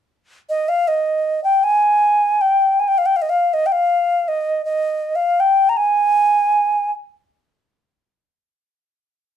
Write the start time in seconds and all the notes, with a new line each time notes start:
0.49 D#5
0.68 F5
0.88 D#5
1.44 G5
1.63 G#5
2.41 G5
2.79 G#5
2.88 G5
2.98 F5
3.06 G5
3.16 F5
3.22 D#5
3.29 F5
3.53 D#5
3.66 G5
3.72 F5
4.28 D#5
4.65 D#5
5.15 F5
5.40 G5
5.69 A#5
5.77 G#5